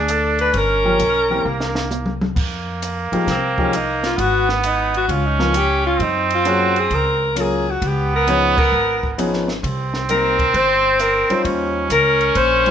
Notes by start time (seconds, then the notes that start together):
Already playing: D2 D4 G#4
0.08 A4, hi-hat pedal, ride
0.39 B4, ride
0.53 G1 C#4, kick, ride
0.57 A#4
0.85 F3 A#3 C#4 G4
0.99 B1, hi-hat pedal, ride
1.30 E3 A#3 C4 G4
1.44 C2 A#3
1.60 snare
1.75 snare
1.91 hi-hat pedal, high tom
2.06 mid tom
2.21 mid tom
2.35 F2 A#3, kick, crash
2.82 hi-hat pedal, ride
3.12 E2 F3 G#3 A#3 D#4 G4, ride
3.27 C2 C4, kick, snare, ride
3.58 F3 G#3 A#3 C#4 D#4 G4, kick
3.73 D#4, hi-hat pedal, ride
4.04 F4, snare, ride
4.17 G#1 B3, kick, ride
4.21 F#4
4.49 A#3, snare
4.64 D#4, hi-hat pedal, ride
4.94 F#4, ride
5.08 C#2 C#4 F4, kick, ride
5.27 D#4
5.38 F3 B3 C#4 D#4 F4 A#4, snare
5.54 G4, hi-hat pedal, ride
5.87 F4
5.98 F#2 C4, kick, ride
6.03 D#4
6.30 F4, ride
6.45 F#3 A#3 C#4 F4 F#4 G#4, hi-hat pedal, ride
6.76 G#4, ride
6.91 C#2, kick, ride
6.95 A#4
7.36 F#3 A#3 C#4 F4 A#4, hi-hat pedal, ride
7.41 G#4
7.70 F#4
7.81 C#2 B3, kick, ride
7.87 G4
8.16 A#4
8.27 F3 B3 C#4 D#4 G#4 C#5, hi-hat pedal, ride
8.58 A#4, kick, crash
8.72 G#1
9.03 kick
9.18 F3 B3 C#4 D#4 G#4, hi-hat pedal, ride
9.33 snare
9.48 snare
9.63 C2 C4, kick, ride
9.94 snare
10.09 G3 A#3 C4 D#4 A#4, hi-hat pedal, ride
10.39 kick, ride
10.54 G1 C5, kick, ride
10.99 A#4, hi-hat pedal, ride
11.30 G3 C#4 D#4 F4 C5, muted upright bass stroke, ride
11.44 D#2 C#4, kick, ride
11.90 C#2 A#4, hi-hat pedal, ride
12.21 ride
12.35 A#1 C5, kick, ride
12.66 G3 C#4 D#4 F4 C5, ride